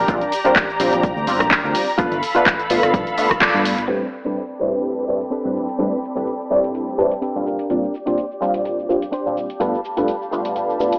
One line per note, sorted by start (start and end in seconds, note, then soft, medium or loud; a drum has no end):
0.00 0.32 D4 medium
0.00 0.32 G4 medium
0.00 1.97 G4 medium
0.00 0.32 A#4 loud
0.00 1.95 D5 medium
0.00 1.97 A#5 medium
0.08 0.19 A#1 loud
0.08 0.23 G3 loud
0.08 0.23 C4 medium
0.08 0.23 D4 medium
0.08 0.23 F4 loud
0.08 kick loud
0.08 closed hi-hat medium
0.08 cabasa soft
0.21 closed hi-hat soft
0.21 cabasa soft
0.32 open hi-hat loud
0.32 cabasa medium
0.45 0.57 G3 medium
0.45 0.58 C4 medium
0.45 0.69 D4 medium
0.45 0.58 D4 medium
0.45 0.58 F4 medium
0.45 0.69 G4 medium
0.45 0.69 A#4 medium
0.45 closed hi-hat soft
0.45 cabasa soft
0.56 kick loud
0.56 clap loud
0.56 closed hi-hat medium
0.56 cabasa soft
0.70 cabasa soft
0.80 0.90 A#1 medium
0.80 1.25 G3 loud
0.80 1.25 C4 medium
0.80 1.25 D4 medium
0.80 1.25 F4 loud
0.80 open hi-hat loud
0.80 cabasa medium
0.92 1.12 A#1 loud
0.92 muted clean electric guitar stroke soft
0.92 closed hi-hat medium
0.92 cabasa soft
1.03 kick loud
1.03 closed hi-hat medium
1.03 cabasa soft
1.17 1.25 D2 loud
1.17 cabasa soft
1.27 1.40 G1 medium
1.27 1.42 G3 medium
1.27 1.42 C4 medium
1.27 1.42 D4 medium
1.27 1.42 F4 medium
1.27 open hi-hat loud
1.27 cabasa medium
1.39 1.49 A#1 loud
1.39 muted clean electric guitar stroke medium
1.39 cross-stick medium
1.39 closed hi-hat medium
1.39 cabasa soft
1.50 1.74 D4 medium
1.50 1.75 G4 medium
1.50 1.75 A#4 loud
1.50 kick loud
1.50 clap loud
1.50 closed hi-hat medium
1.50 cabasa soft
1.64 1.73 D2 loud
1.64 1.85 G3 medium
1.64 1.85 C4 medium
1.64 1.85 D4 medium
1.64 1.86 F4 medium
1.64 cabasa soft
1.75 open hi-hat loud
1.75 cabasa medium
1.89 cabasa soft
1.98 2.13 A3 loud
1.98 2.13 B3 medium
1.98 2.13 D4 medium
1.98 2.17 F4 loud
1.98 2.13 F4 loud
1.98 2.17 A4 loud
1.98 3.87 A4 medium
1.98 2.17 B4 loud
1.98 3.87 F5 medium
1.98 3.87 B5 medium
1.98 muted fingered electric bass stroke soft
1.98 kick loud
1.98 closed hi-hat medium
1.98 cabasa soft
2.11 2.21 G1 loud
2.11 closed hi-hat soft
2.11 cabasa soft
2.23 open hi-hat loud
2.23 cabasa medium
2.35 2.48 A3 medium
2.35 2.48 B3 medium
2.35 2.48 D4 medium
2.35 2.59 F4 medium
2.35 2.48 F4 medium
2.35 2.59 A4 medium
2.35 2.60 B4 loud
2.35 closed hi-hat soft
2.35 cabasa soft
2.46 kick loud
2.46 clap loud
2.46 closed hi-hat medium
2.46 cabasa soft
2.59 closed hi-hat soft
2.59 cabasa soft
2.70 2.81 G1 medium
2.70 3.15 A3 medium
2.70 3.15 B3 medium
2.70 3.15 D4 medium
2.70 3.16 F4 loud
2.70 open hi-hat loud
2.70 cabasa medium
2.82 2.92 G1 loud
2.82 muted clean electric guitar stroke soft
2.82 cross-stick medium
2.82 closed hi-hat medium
2.82 cabasa soft
2.94 3.05 B1 medium
2.94 kick loud
2.94 closed hi-hat medium
2.94 cabasa soft
3.07 closed hi-hat soft
3.07 cabasa soft
3.18 3.32 A3 medium
3.18 3.32 B3 medium
3.18 3.32 D4 medium
3.18 3.33 F4 medium
3.18 open hi-hat loud
3.18 cabasa medium
3.30 muted clean electric guitar stroke medium
3.30 kick medium
3.30 cross-stick medium
3.30 closed hi-hat medium
3.30 cabasa soft
3.40 3.65 F4 medium
3.40 3.65 A4 medium
3.40 3.66 D5 loud
3.40 kick loud
3.40 clap loud
3.40 closed hi-hat medium
3.40 cabasa soft
3.54 3.74 G2 medium
3.54 3.76 A3 medium
3.54 3.76 B3 medium
3.54 3.76 D4 medium
3.54 3.76 F4 medium
3.54 cabasa soft
3.65 open hi-hat loud
3.65 cabasa medium
3.78 3.87 G1 loud
3.78 closed hi-hat soft
3.78 cabasa soft
3.88 4.03 A2 medium
3.88 4.04 G3 medium
3.88 4.07 C4 loud
3.88 7.42 C4 medium
3.88 4.04 C4 medium
3.88 4.07 D4 medium
3.88 4.04 D4 medium
3.88 4.04 E4 medium
3.88 4.07 G4 medium
3.88 7.43 A4 medium
3.88 4.08 A4 medium
3.88 4.08 B4 loud
3.88 4.04 B4 loud
3.88 7.43 D5 medium
3.88 7.43 G5 medium
3.88 7.43 B5 medium
4.25 4.38 A2 medium
4.25 4.38 G3 medium
4.25 4.43 C4 medium
4.25 4.39 C4 medium
4.25 4.43 D4 medium
4.25 4.39 D4 medium
4.25 4.39 E4 medium
4.25 4.43 G4 medium
4.25 4.43 A4 medium
4.25 4.44 B4 medium
4.25 4.39 B4 medium
4.37 closed hi-hat soft
4.37 cabasa soft
4.51 cabasa soft
4.60 5.06 A2 medium
4.60 5.06 G3 medium
4.60 5.06 C4 medium
4.60 5.06 D4 medium
4.60 5.06 E4 medium
4.60 5.06 B4 loud
4.60 muted clean electric guitar stroke medium
4.60 cabasa medium
4.73 muted clean electric guitar stroke soft
4.73 closed hi-hat medium
4.73 cabasa soft
4.84 muted clean electric guitar stroke soft
4.84 closed hi-hat soft
4.84 cabasa soft
4.98 cabasa soft
5.08 5.22 A2 medium
5.08 5.23 G3 medium
5.08 5.23 C4 medium
5.08 5.23 D4 medium
5.08 5.23 E4 medium
5.08 5.23 B4 medium
5.08 cabasa medium
5.21 closed hi-hat medium
5.21 cabasa soft
5.31 5.55 C4 medium
5.31 5.56 D4 medium
5.31 5.56 G4 medium
5.31 5.56 A4 medium
5.31 5.56 B4 medium
5.31 closed hi-hat soft
5.31 cabasa soft
5.45 5.66 A2 medium
5.45 5.66 G3 medium
5.45 5.66 C4 medium
5.45 5.66 D4 medium
5.45 5.66 E4 medium
5.45 5.66 B4 medium
5.45 cabasa soft
5.57 cabasa medium
5.69 closed hi-hat medium
5.69 cabasa soft
5.79 5.94 A2 medium
5.79 5.94 G3 medium
5.79 5.98 C4 loud
5.79 5.94 C4 medium
5.79 5.98 D4 medium
5.79 5.94 D4 medium
5.79 5.94 E4 medium
5.79 5.98 G4 medium
5.79 5.98 A4 medium
5.79 5.94 B4 loud
5.79 5.98 B4 loud
5.79 closed hi-hat soft
5.79 cabasa soft
5.94 cabasa soft
6.04 cabasa medium
6.16 6.29 A2 medium
6.16 6.29 G3 medium
6.16 6.33 C4 medium
6.16 6.29 C4 medium
6.16 6.34 D4 medium
6.16 6.29 D4 medium
6.16 6.29 E4 medium
6.16 6.34 G4 medium
6.16 6.34 A4 medium
6.16 6.29 B4 medium
6.16 6.34 B4 medium
6.16 closed hi-hat medium
6.16 cabasa soft
6.27 closed hi-hat soft
6.27 cabasa soft
6.41 cabasa soft
6.50 6.96 A2 medium
6.50 6.96 G3 medium
6.50 6.96 C4 medium
6.50 6.96 D4 medium
6.50 6.96 E4 medium
6.50 6.96 B5 loud
6.50 muted clean electric guitar stroke medium
6.50 cabasa medium
6.64 muted clean electric guitar stroke soft
6.64 closed hi-hat medium
6.64 cabasa soft
6.74 muted clean electric guitar stroke soft
6.74 closed hi-hat soft
6.74 cabasa soft
6.89 cabasa soft
6.98 7.13 A2 medium
6.98 7.13 G3 medium
6.98 7.13 C4 medium
6.98 7.13 D4 medium
6.98 7.13 E4 medium
6.98 7.13 B4 medium
6.98 7.21 A5 medium
6.98 cabasa medium
7.11 closed hi-hat medium
7.11 cabasa soft
7.21 7.46 C4 medium
7.21 7.44 D4 medium
7.21 7.45 G4 medium
7.21 7.46 A4 medium
7.21 7.47 B4 medium
7.21 7.45 G5 medium
7.21 closed hi-hat soft
7.21 cabasa soft
7.35 7.57 A#2 medium
7.35 7.57 G3 medium
7.35 7.57 C4 medium
7.35 7.57 D4 medium
7.35 7.57 F4 medium
7.35 cabasa soft
7.45 7.94 D4 medium
7.45 10.99 G4 medium
7.45 7.94 G4 medium
7.45 7.94 A#4 medium
7.45 9.58 D5 medium
7.45 7.68 F5 medium
7.45 cabasa medium
7.59 closed hi-hat medium
7.59 cabasa soft
7.70 7.84 A#2 medium
7.70 7.84 G3 medium
7.70 7.85 C4 medium
7.70 7.85 D4 medium
7.70 7.85 F4 loud
7.70 closed hi-hat soft
7.70 cabasa soft
7.84 cabasa soft
7.94 cabasa medium
8.06 8.19 A#2 medium
8.06 8.19 G3 medium
8.06 8.19 C4 medium
8.06 8.24 D4 medium
8.06 8.19 D4 medium
8.06 8.19 F4 medium
8.06 8.24 G4 medium
8.06 8.25 C5 medium
8.06 closed hi-hat medium
8.06 cabasa soft
8.18 closed hi-hat soft
8.18 cabasa soft
8.32 cabasa soft
8.41 8.86 A#2 medium
8.41 8.86 G3 medium
8.41 8.87 C4 medium
8.41 8.87 D4 medium
8.41 8.87 F4 loud
8.41 muted clean electric guitar stroke medium
8.41 cabasa medium
8.54 muted clean electric guitar stroke soft
8.54 closed hi-hat medium
8.54 cabasa soft
8.64 muted clean electric guitar stroke soft
8.64 closed hi-hat soft
8.64 cabasa soft
8.79 cabasa soft
8.89 9.03 A#2 medium
8.89 9.03 G3 medium
8.89 9.04 C4 medium
8.89 9.04 D4 medium
8.89 9.04 F4 medium
8.89 cabasa medium
9.02 closed hi-hat medium
9.02 cabasa soft
9.12 9.36 D4 medium
9.12 9.37 G4 medium
9.12 9.37 C5 medium
9.12 closed hi-hat soft
9.12 cabasa soft
9.26 9.47 A#2 medium
9.26 9.47 G3 medium
9.26 9.47 C4 medium
9.26 9.47 D4 medium
9.26 9.48 F4 medium
9.26 cabasa soft
9.37 cabasa medium
9.50 closed hi-hat medium
9.50 cabasa soft
9.60 9.75 G2 medium
9.60 9.75 A3 medium
9.60 9.75 B3 medium
9.60 9.75 D4 medium
9.60 9.79 F4 loud
9.60 9.75 F4 loud
9.60 9.79 G4 medium
9.60 9.79 A4 medium
9.60 9.79 B4 loud
9.60 10.99 F5 medium
9.60 10.99 A5 medium
9.60 10.99 B5 medium
9.60 closed hi-hat soft
9.60 cabasa soft
9.74 cabasa soft
9.85 cabasa medium
9.97 10.10 G2 medium
9.97 10.10 A3 medium
9.97 10.10 B3 medium
9.97 10.10 D4 medium
9.97 10.15 F4 medium
9.97 10.10 F4 medium
9.97 10.15 G4 medium
9.97 10.15 A4 medium
9.97 10.15 B4 medium
9.97 closed hi-hat medium
9.97 cabasa soft
10.08 closed hi-hat soft
10.08 cabasa soft
10.22 cabasa soft
10.31 10.77 G2 medium
10.31 10.77 A3 medium
10.31 10.77 B3 medium
10.31 10.77 D4 medium
10.31 10.78 F4 loud
10.31 muted clean electric guitar stroke medium
10.31 cabasa medium
10.45 muted clean electric guitar stroke soft
10.45 closed hi-hat medium
10.45 cabasa soft
10.55 muted clean electric guitar stroke soft
10.55 closed hi-hat soft
10.55 cabasa soft
10.70 cabasa soft
10.80 10.94 G2 medium
10.80 10.94 A3 medium
10.80 10.94 B3 medium
10.80 10.94 D4 medium
10.80 10.94 F4 medium
10.80 cabasa medium
10.93 closed hi-hat medium
10.93 cabasa soft